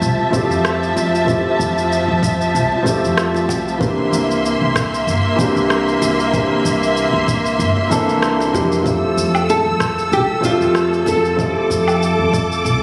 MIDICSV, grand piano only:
0, 0, Header, 1, 2, 480
1, 0, Start_track
1, 0, Key_signature, -1, "major"
1, 0, Tempo, 631579
1, 973, Time_signature, 4, 2, 24, 8
1, 9750, End_track
2, 0, Start_track
2, 0, Title_t, "Grand piano"
2, 0, Program_c, 0, 0
2, 0, Control_c, 0, 64, 127
2, 0, Note_on_c, 0, 53, 65
2, 0, Note_on_c, 0, 57, 63
2, 0, Note_on_c, 0, 60, 62
2, 0, Note_on_c, 0, 64, 60
2, 0, Note_on_c, 0, 67, 74
2, 215, Note_off_c, 0, 53, 0
2, 221, Note_off_c, 0, 57, 0
2, 226, Note_off_c, 0, 60, 0
2, 231, Note_off_c, 0, 64, 0
2, 231, Note_on_c, 0, 53, 84
2, 236, Note_off_c, 0, 67, 0
2, 241, Note_on_c, 0, 57, 75
2, 250, Note_on_c, 0, 60, 78
2, 261, Note_on_c, 0, 64, 75
2, 268, Note_on_c, 0, 67, 93
2, 936, Note_off_c, 0, 53, 0
2, 941, Note_off_c, 0, 57, 0
2, 946, Note_off_c, 0, 60, 0
2, 948, Note_on_c, 0, 53, 72
2, 951, Note_off_c, 0, 64, 0
2, 955, Note_off_c, 0, 67, 0
2, 958, Note_on_c, 0, 57, 61
2, 966, Note_on_c, 0, 60, 59
2, 977, Note_on_c, 0, 64, 63
2, 987, Note_on_c, 0, 67, 77
2, 2135, Note_off_c, 0, 53, 0
2, 2140, Note_off_c, 0, 57, 0
2, 2144, Note_off_c, 0, 60, 0
2, 2148, Note_on_c, 0, 53, 88
2, 2149, Note_off_c, 0, 64, 0
2, 2154, Note_off_c, 0, 67, 0
2, 2156, Note_on_c, 0, 57, 78
2, 2168, Note_on_c, 0, 60, 74
2, 2175, Note_on_c, 0, 64, 76
2, 2184, Note_on_c, 0, 67, 94
2, 2855, Note_off_c, 0, 53, 0
2, 2859, Note_off_c, 0, 57, 0
2, 2865, Note_off_c, 0, 60, 0
2, 2868, Note_off_c, 0, 64, 0
2, 2871, Note_on_c, 0, 52, 69
2, 2873, Note_off_c, 0, 67, 0
2, 2880, Note_on_c, 0, 58, 68
2, 2890, Note_on_c, 0, 60, 65
2, 2900, Note_on_c, 0, 62, 60
2, 2904, Control_c, 0, 64, 0
2, 2908, Note_on_c, 0, 67, 81
2, 3047, Control_c, 0, 64, 127
2, 4056, Note_off_c, 0, 52, 0
2, 4061, Note_off_c, 0, 58, 0
2, 4066, Note_off_c, 0, 60, 0
2, 4071, Note_off_c, 0, 62, 0
2, 4071, Note_on_c, 0, 52, 81
2, 4075, Note_off_c, 0, 67, 0
2, 4078, Note_on_c, 0, 58, 83
2, 4090, Note_on_c, 0, 60, 76
2, 4099, Note_on_c, 0, 62, 82
2, 4109, Note_on_c, 0, 67, 96
2, 4776, Note_off_c, 0, 52, 0
2, 4780, Note_off_c, 0, 58, 0
2, 4786, Note_off_c, 0, 60, 0
2, 4790, Note_off_c, 0, 62, 0
2, 4794, Note_on_c, 0, 52, 67
2, 4795, Note_off_c, 0, 67, 0
2, 4805, Note_on_c, 0, 58, 65
2, 4814, Note_on_c, 0, 60, 61
2, 4826, Note_on_c, 0, 62, 64
2, 4836, Note_on_c, 0, 67, 77
2, 5978, Note_off_c, 0, 52, 0
2, 5983, Note_off_c, 0, 58, 0
2, 5988, Note_off_c, 0, 60, 0
2, 5994, Note_off_c, 0, 62, 0
2, 5999, Note_off_c, 0, 67, 0
2, 6000, Note_on_c, 0, 52, 84
2, 6004, Note_on_c, 0, 58, 75
2, 6010, Note_on_c, 0, 60, 75
2, 6013, Note_on_c, 0, 62, 75
2, 6019, Note_on_c, 0, 69, 96
2, 6461, Note_off_c, 0, 52, 0
2, 6463, Note_off_c, 0, 58, 0
2, 6466, Note_off_c, 0, 60, 0
2, 6467, Note_off_c, 0, 62, 0
2, 6470, Note_off_c, 0, 69, 0
2, 6480, Note_on_c, 0, 52, 71
2, 6484, Note_on_c, 0, 58, 68
2, 6488, Note_on_c, 0, 60, 68
2, 6494, Note_on_c, 0, 62, 65
2, 6498, Note_on_c, 0, 67, 86
2, 6701, Note_off_c, 0, 52, 0
2, 6703, Note_off_c, 0, 58, 0
2, 6705, Note_off_c, 0, 60, 0
2, 6708, Note_off_c, 0, 62, 0
2, 6709, Note_on_c, 0, 53, 71
2, 6710, Note_off_c, 0, 67, 0
2, 6718, Note_on_c, 0, 57, 64
2, 6728, Note_on_c, 0, 60, 63
2, 6737, Note_on_c, 0, 64, 66
2, 6741, Control_c, 0, 64, 0
2, 6748, Note_on_c, 0, 67, 76
2, 6875, Control_c, 0, 64, 127
2, 7895, Note_off_c, 0, 53, 0
2, 7900, Note_off_c, 0, 57, 0
2, 7905, Note_off_c, 0, 60, 0
2, 7908, Note_on_c, 0, 53, 90
2, 7909, Note_off_c, 0, 64, 0
2, 7915, Note_off_c, 0, 67, 0
2, 7919, Note_on_c, 0, 57, 79
2, 7929, Note_on_c, 0, 60, 82
2, 7939, Note_on_c, 0, 76, 76
2, 7946, Note_on_c, 0, 67, 93
2, 8615, Note_off_c, 0, 53, 0
2, 8620, Note_off_c, 0, 57, 0
2, 8625, Note_off_c, 0, 60, 0
2, 8630, Note_off_c, 0, 76, 0
2, 8631, Note_on_c, 0, 53, 75
2, 8634, Note_off_c, 0, 67, 0
2, 8642, Note_on_c, 0, 57, 67
2, 8652, Note_on_c, 0, 60, 62
2, 8664, Note_on_c, 0, 64, 68
2, 8672, Note_on_c, 0, 67, 77
2, 9750, Note_off_c, 0, 53, 0
2, 9750, Note_off_c, 0, 57, 0
2, 9750, Note_off_c, 0, 60, 0
2, 9750, Note_off_c, 0, 64, 0
2, 9750, Note_off_c, 0, 67, 0
2, 9750, End_track
0, 0, End_of_file